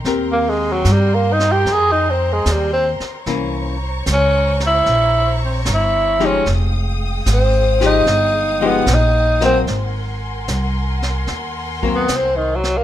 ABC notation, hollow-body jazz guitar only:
X:1
M:4/4
L:1/8
Q:"Swing" 1/4=75
K:Ebmix
V:1 name="Hollow-body jazz guitar"
[CGB]4- [CGB] z3 | [=E,B,D] z6 [F,A,_EG] | z3 [F,A,EG] z [F,A,EG] z [_G,B,C] | z4 z [_G,B,C] z2 |]